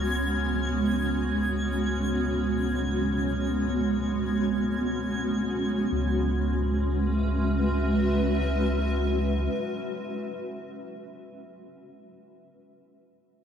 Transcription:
Already playing: C#2 G#3 B3 C#4 F#4 C#5 G#6
5.90 C#2 G#3
6.09 C#4
6.28 F#4
6.47 B4
6.63 E5

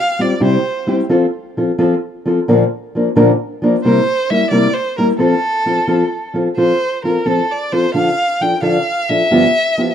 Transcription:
0.00 F5
0.19 G3 C4 F4 G4 D5
0.40 C3 G3 C4 E4 G4
0.45 C5
0.87 G3 C4 E4 G4
1.09 F3 C4 F4 A4
1.57 F3 C4 F4 A4
1.78 F3 C4 F4 A4
2.26 F3 C4 F4 A4
2.48 A#2 D3 F3 A#3 D4 A#4
2.95 F3 A#3 D4 A#4
3.16 A#2 D3 F3 A#3 D4 A#4
3.62 F3 A#3 D4 A#4
3.84 C3 G3 A#3 E4 A#4 C5
4.30 G3 A#3 E4 A#4 E5
4.50 C3 G3 A#3 E4 A#4 D5
4.74 C5
4.97 G3 A#3 E4 A#4
5.18 F3 C4 F4 A4
5.66 F3 C4 F4 A4
5.87 F3 C4 F4 A4
6.34 F3 C4 F4 A4
6.57 F3 C4 F4 A4 C5
7.04 F3 C4 F4 A4 A#4
7.25 F3 C4 F4 A4
7.51 D5
7.72 F3 C4 F4 A4 C5
7.94 D3 F3 D4 F4 A4 F5
8.41 F3 D4 F4 A4 G5
8.62 D3 F3 D4 F4 A4 F5
9.09 F3 D4 F4 A4 E5
9.31 G2 D3 F3 B3 F4 G4
9.78 F3 B3 F4 G4

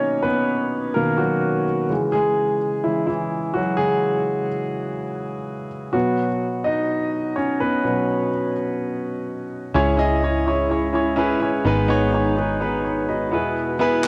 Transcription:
Already playing: B2 D#3 F#3 A#3 C#4 D#4 F#4 C#5 D#5
0.22 B3 B4
0.94 B2 D#3 A#3 A#4
1.18 F#3 F#4
1.89 C#3 E3 G#3
2.12 G#3 G#4
2.84 C#3 E3 G#3 E4
3.07 E3 E4
3.54 F#3 F#4
3.77 C#3 E3 G#3 G#4
5.93 B2 F#3 B3 F#4
6.64 D#4 D#5
7.36 C#4 C#5
7.60 B3 B4
7.84 B2 F#3 B3
9.74 C#2 G#2 C#3 G#3 C#4 E4 G#4 C#5
9.97 C#4 E4 G#4 D#5
10.22 C#4 E4 G#4 C#5
10.46 C#4 E4 G#4 C#5
10.69 C#4 E4 G#4 C#5
10.93 C#4 E4 G#4 C#5
11.16 C#4 E4 G#4 B4
11.41 F#1 C#4 E4 G#4 C#5
11.65 G#1 G#2 B2 D#3 B3 D#4 G#4 B4
11.88 B3 D#4 G#4 C#5
12.13 B3 D#4 G#4 C#5
12.36 B3 D#4 G#4 B4
12.60 B3 D#4 G#4 B4
12.85 C#5
13.09 F#4 D#5 B5
13.31 E1 B2 G#3 B3 E4 G#4 B4
13.79 B3 E4 G#4 B4
14.04 B3 E4, clap

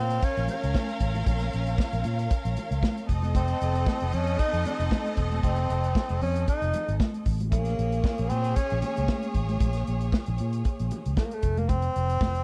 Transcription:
Already playing: A#2 C4 C#4 A#4 F5
0.10 closed hi-hat
0.22 C#4, kick, closed hi-hat
0.37 A#1, closed hi-hat
0.48 C#4, closed hi-hat, muted conga, low conga
0.63 C#2, closed hi-hat
0.74 kick, snare, high conga
0.89 closed hi-hat
1.00 A1, kick, closed hi-hat
1.15 closed hi-hat, high conga
1.26 A#1, kick, closed hi-hat, muted conga
1.39 snare, closed hi-hat
1.53 A#1, closed hi-hat
1.67 closed hi-hat
1.78 kick, snare, high conga
1.93 A#1, closed hi-hat
2.04 A#2, closed hi-hat
2.19 closed hi-hat
2.30 kick, closed hi-hat
2.45 A#1, closed hi-hat
2.57 closed hi-hat, muted conga, low conga
2.71 C#2, closed hi-hat
2.83 kick, snare, high conga
2.97 closed hi-hat
3.08 F1 C4 A4 D#5, kick, closed hi-hat
3.22 closed hi-hat, high conga
3.35 C4, kick, closed hi-hat, muted conga
3.48 closed hi-hat
3.61 F1, closed hi-hat
3.75 closed hi-hat
3.86 kick, snare, high conga
4.00 F1, closed hi-hat
4.12 F2 C#4, closed hi-hat
4.27 closed hi-hat
4.39 D#4, kick, closed hi-hat
4.53 F2, closed hi-hat
4.65 D#4, closed hi-hat, muted conga, low conga
4.79 F1, closed hi-hat
4.91 kick, snare, high conga
5.06 closed hi-hat
5.17 E1, kick, closed hi-hat
5.31 closed hi-hat, high conga
5.43 F1 C4, kick, closed hi-hat, muted conga
5.56 closed hi-hat
5.70 F1, closed hi-hat
5.84 closed hi-hat
5.95 kick, snare, high conga
6.09 F1, closed hi-hat
6.21 F2 C#4, open hi-hat
6.36 closed hi-hat
6.47 D#4, kick, closed hi-hat
6.62 F1, closed hi-hat
6.73 closed hi-hat, muted conga, low conga
6.88 G#1, closed hi-hat
7.00 kick, snare, high conga
7.14 closed hi-hat
7.26 A1, kick, open hi-hat
7.40 closed hi-hat, high conga
7.51 A#1 A#3 G#4 C#5, kick, closed hi-hat, muted conga
7.65 snare, closed hi-hat
7.79 A#1, closed hi-hat
7.92 closed hi-hat
8.04 kick, snare, high conga
8.18 A#1, closed hi-hat
8.29 A#2 C4, closed hi-hat, muted conga
8.44 closed hi-hat
8.55 C#4, kick, closed hi-hat
8.70 A#1, closed hi-hat
8.81 C#4, closed hi-hat, muted conga, low conga
8.97 C#2, closed hi-hat
9.08 kick, snare, high conga
9.22 closed hi-hat
9.34 A1, kick, closed hi-hat
9.48 closed hi-hat, high conga
9.60 A#1, kick, closed hi-hat, muted conga
9.73 snare, closed hi-hat
9.87 A#1, closed hi-hat
10.01 closed hi-hat
10.12 kick, snare, high conga
10.26 A#1, closed hi-hat
10.38 A#2, closed hi-hat
10.53 closed hi-hat
10.65 kick, closed hi-hat
10.79 A#1, closed hi-hat
10.91 closed hi-hat, muted conga, low conga
11.05 C#2, closed hi-hat
11.17 A3, kick, snare, high conga
11.24 A#3
11.31 A3, closed hi-hat
11.42 F1, kick, closed hi-hat
11.57 A#3, closed hi-hat, high conga
11.69 C4, kick, closed hi-hat, muted conga
11.82 closed hi-hat
11.96 F1, closed hi-hat
12.09 closed hi-hat
12.21 kick, snare, high conga
12.35 closed hi-hat

